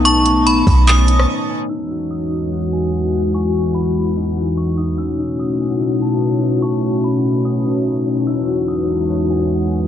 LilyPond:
<<
  \new Staff \with { instrumentName = "Synth bell" } { \time 4/4 \key e \major \tempo 4 = 146 cis'''4 b''4 dis'''4 r4 | r4 dis'''2. | cis'''4 b''4 r4 cis'''8 dis'''8 | e'''4 dis'''2. |
cis'''4 b''4 dis'''4 r4 | e'''4 dis'''2. | }
  \new Staff \with { instrumentName = "Synth texture" } { \time 4/4 \key e \major << { <dis' cis'' a''>1 | <fis' fis'' gis''>1~ | <fis' fis'' gis''>1 | <b' cis'' a''>1~ |
<b' cis'' a''>1 | <fis' fis'' gis''>1 | } \\ { r1 | e'1~ | e'1~ | e'1~ |
e'1~ | e'1 | } >> }
  \new Staff \with { instrumentName = "Harp" } { \time 4/4 \key e \major <cis' dis' a''>2 cis'8 dis'4 cis'8 | dis'8 fis'4 dis'8 fis'8 gis''4 fis'8 | gis''2 dis'8 fis'4 dis'8 | cis'8 dis'4 cis'8 dis'8 a''4 dis'8 |
a''2 cis'8 dis'4 cis'8 | dis'8 fis'4 dis'8 fis'8 gis''4 fis'8 | }
  \new Staff \with { instrumentName = "Analog synth pad" } { \time 4/4 \key e \major <a b dis'>1 | <e, e gis fis'>1~ | <e, e gis fis'>1 | <b, a cis' fis'>1~ |
<b, a cis' fis'>1 | <e, e gis fis'>1 | }
  \new Staff \with { instrumentName = "808-style bass" } { \clef bass \time 4/4 \key e \major b,,4. b,,4. r4 | r1 | r1 | r1 |
r1 | r1 | }
  \new DrumStaff \with { instrumentName = "Drums" } \drummode { \time 4/4 hh8 hh8 hh8 <hho bd>8 <hc hh>8 hh16 ss16 r4 | r4 r4 r4 r4 | r4 r4 r4 r4 | r4 r4 r4 r4 |
r4 r4 r4 r4 | r4 r4 r4 r4 | }
>>